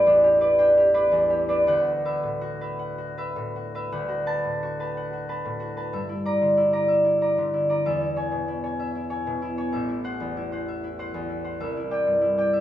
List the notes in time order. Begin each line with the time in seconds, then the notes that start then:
Already playing: A1 G4 B4 D5 G5
0.06 E2 D4
0.24 G4
0.41 B4 D5
0.58 D4 G5
0.77 G4
0.94 D4 B4 D5
1.12 E2
1.30 G4
1.48 D4 B4 D5
1.67 D2 F#5
1.87 F#4
2.05 B4 E5
2.23 A2
2.41 F#4
2.61 B4 E5
2.79 F#5
2.98 F#4
3.17 B4 E5
3.36 A2
3.56 F#4
3.75 B4 E5
3.92 D2 F#5
4.09 F#4
4.26 B4 A5
4.45 A2
4.63 F#4
4.80 B4 A5
4.97 F#5
5.13 F#4
5.29 B4 A5
5.45 A2
5.60 F#4
5.77 B4 A5
5.93 G2 E5
6.09 E4
6.25 D5 A#5
6.41 D3
6.57 E4
6.73 D5 A#5
6.88 E5
7.05 E4
7.21 D5 A#5
7.38 D3
7.54 E4
7.69 D5 A#5
7.86 E2 E5
8.01 E4
8.16 C#5 G#5
8.32 B2
8.48 E4
8.64 C#5 G#5
8.80 E5
8.95 E4
9.10 C#5 G#5
9.27 B2
9.42 E4
9.58 C#5 G#5
9.72 A1 E5
9.89 E4
10.04 C5 F#5
10.20 E2
10.37 E4
10.52 C5 F#5
10.68 E5
10.84 E4
10.99 C5 F#5
11.14 E2
11.29 E4
11.44 C5 F#5
11.60 C2 E5
11.77 E4
11.91 D5 G5
12.07 G2
12.21 E4
12.38 D5 G5
12.53 E5